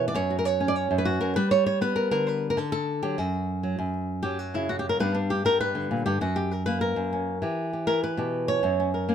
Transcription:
nylon-string guitar
Already playing: B2 E3 E4
0.08 D5
0.15 F#2 C#5
0.30 F#4
0.39 A#4
0.45 C#5
0.60 C#4
0.68 D5
0.76 C#5
0.91 F#2
0.98 B4
1.05 F#4
1.21 F#2 A#4
1.36 G3 B4
1.51 C#5
1.66 C#5
1.81 B3 B4
1.96 A#4
2.11 D3 A#4
2.27 B4
2.50 A#4
2.57 D3 A4
2.72 A4
3.03 F#3 G4
3.18 F#2 F#4
3.63 F#3
3.79 F#2
4.23 F#3 G4
4.39 F#4
4.54 C#3 E4
4.69 F#4
4.79 G4
4.89 A#4
5.00 G2 G3 B3 D4 B4
5.15 D4
5.30 G4
5.45 G3 A#4
5.61 B4
5.75 D3
5.91 A#2
6.06 G2 G4
6.21 F#2 F#4
6.36 G4
6.51 A#4
6.66 A#3 B4
6.81 A#4
6.96 F#2
7.13 C#4
7.42 E3 G4
7.73 G4
7.87 E4 A#4
8.04 B4
8.17 B2 G4
8.48 C#5
8.63 F#2 F#4
8.80 C#4
8.94 A#4
9.09 A#3 C#4

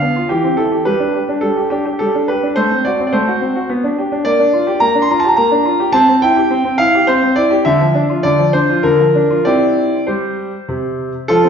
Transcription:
grand piano
Already playing: F5
0.02 B3
0.16 F4
0.29 E3 G4
0.44 C4
0.57 E4 A4
0.72 G4
0.85 G3 B4
1.00 D4
1.14 G4
1.29 D4
1.41 G3 A4
1.57 G4
1.70 D4 G4
1.85 G4
1.99 G3 A4
2.15 D4
2.28 G4 B4
2.43 D4
2.56 A3 C5
2.71 C4
2.85 F#4 D5
3.00 C4
3.07 D5
3.13 A3 C5
3.28 F#4
3.41 C4
3.55 F#4
3.69 B3
3.84 D4
3.99 G4
4.12 D4
4.25 A#3 D5
4.39 D4
4.53 F4
4.67 G4
4.80 A#3 A#5
4.95 D4
5.02 C6
5.10 F4 A#5
5.20 A5
5.24 G4
5.29 A#5
5.37 A#3 A#5
5.51 D4
5.65 F4
5.80 G4
5.93 C4 A5
6.09 C4
6.22 E4 G5
6.37 G4
6.50 C4
6.64 C4
6.78 E4 F5
6.95 G4
7.07 C4 C5
7.23 C4
7.36 E4 D5
7.51 G4
7.65 D3 E5
7.80 F3
7.95 D4
8.10 F4
8.23 D3 D5
8.39 F3
8.53 D4 C5
8.69 F4
8.83 D3 A#4
9.00 F3
9.15 D4
9.30 F4
9.45 C4 E4 G4 D5
10.07 G3 C5
10.69 C3
11.28 F3 F4 A4
11.44 C4

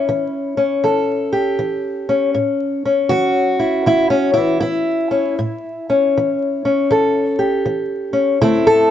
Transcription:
steel-string acoustic guitar
Already playing: C#4 E4
0.09 E3
0.57 C#4
0.84 E3 A4
1.33 G4
1.59 E3
2.09 C#4
2.34 A2
2.85 C#4
3.09 E3 F#4
3.60 E4
3.86 E3 E4
4.10 C#4
4.34 E3 E4
4.60 E3 E4
5.11 C#4
5.39 A2
5.90 C#4
6.17 E3
6.65 C#4
6.91 E3 A4
7.39 G4
7.66 E3
8.13 C#4
8.42 D3 A3 C4 E4
8.67 A4

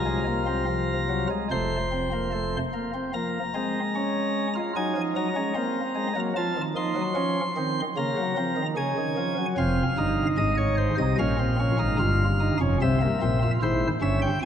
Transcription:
pipe organ
Already playing: C2 C3 F4 A#5
0.06 G#3
0.27 A#3
0.46 C4
0.67 F3
1.09 F#3
1.30 G#3
1.51 F1 F2 A3 C5 C6
1.92 C4
2.13 A#3
2.32 A3
2.74 A#3
2.94 C4
3.14 F3 A#3 A#5
3.54 G#3 C4
3.95 C#4
4.55 F4
4.76 F#3 D#4 G#5
4.96 F3
5.16 F#3 A#5
5.36 G#3 C#4
5.55 A#3 C4
5.95 G#3
6.16 F#3 A#3
6.36 F3 F4 A5
6.57 D#3
6.76 F3 D#4 C6
6.96 F#3
7.15 F3 C#4
7.57 D#3 C4
7.97 C#3 A#3 A#5
8.17 F#3
8.37 F3 C4
8.57 D#3
8.77 C#3 C#4 G#5
8.97 D#3
9.17 F3
9.38 F#3
9.58 F1 F2 C4 F5
9.98 G1 G2 D#4
10.37 G#1 G#2 D#5
10.57 C#5
10.78 C5
10.98 C2 C3 D#5
11.19 A#1 A#2 C#4 F5
11.39 C4
11.60 C#4
11.79 G#1 G#2 D#4
11.99 G1 G2 F4
12.40 D#4
12.61 F1 F2 C#4
12.82 C2 C3 C4 E5
13.02 A#3
13.22 A#1 A#2 C4
13.42 F4
13.63 G#1 G#2 E4 C5
14.02 G1 G2 C#4 E5
14.22 G5

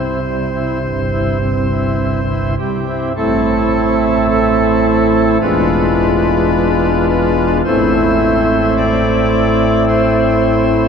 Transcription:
pipe organ
Already playing: C2 C3 C4 E4 C5
0.24 G3
0.53 C4 E4
0.83 G1 G2
1.13 C4 E4
1.42 C4
1.71 C4 E4
2.29 C4 E4
2.59 G3 G4
2.88 C4 E4
3.17 A1 A2 A3 C4 E4 A4
4.29 A4
5.41 E1 E2 G#3 D4 F4 B4
7.09 B4
7.65 A1 A2 A3 C4 E4 C5
8.77 D5
9.88 C5

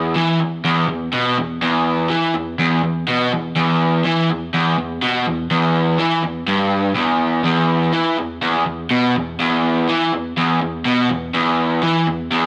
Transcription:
overdriven electric guitar
Already playing: E2
0.16 E3
0.41 E2
0.65 E2
0.89 E2
1.14 B2
1.38 E2
1.62 E2
2.10 E3
2.34 E2
2.59 E2
2.83 E2
3.08 B2
3.32 E2
3.56 E2
4.05 E3
4.29 E2
4.54 E2
4.78 E2
5.03 B2
5.27 E2
5.51 E2
5.99 E3
6.23 E2
6.47 G2
6.96 E2
7.45 E2
7.93 E3
8.17 E2
8.42 E2
8.66 E2
8.91 B2
9.16 E2
9.40 E2
9.89 E3
10.13 E2
10.37 E2
10.62 E2
10.86 B2
11.10 E2
11.34 E2
11.83 E3
12.07 E2
12.32 E2

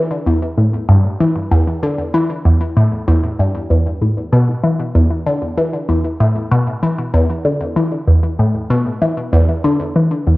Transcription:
synth arpeggio sound
Already playing: E3
0.27 E2
0.58 A2
0.89 G2
1.20 E3
1.51 E2
1.83 D3
2.14 E3
2.45 E2
2.77 A2
3.08 E2
3.39 G2
3.70 E2
4.02 A2
4.33 B2
4.64 E3
4.95 E2
5.27 D3
5.58 E3
5.89 E2
6.20 A2
6.51 B2
6.83 E3
7.14 E2
7.45 D3
7.76 E3
8.08 E2
8.39 A2
8.70 B2
9.02 E3
9.33 E2
9.64 D3
9.96 E3
10.27 E2

